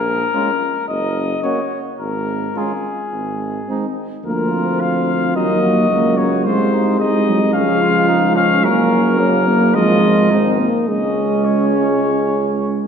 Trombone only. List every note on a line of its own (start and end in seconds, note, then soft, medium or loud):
0.34 0.50 G#3 soft
1.44 1.60 A#3 soft
2.56 2.72 G#3 soft
3.69 3.85 G#3 soft
4.24 5.37 F3 soft
5.36 5.90 F#3 soft
5.90 6.47 F#3 soft
6.46 6.99 G#3 soft
7.00 7.12 G#3 soft
7.27 7.40 F#3 soft
7.55 8.66 F3 soft
8.64 9.76 F#3 medium
9.75 10.33 F3 medium
10.31 10.68 G#3 soft
10.88 12.84 G#3 soft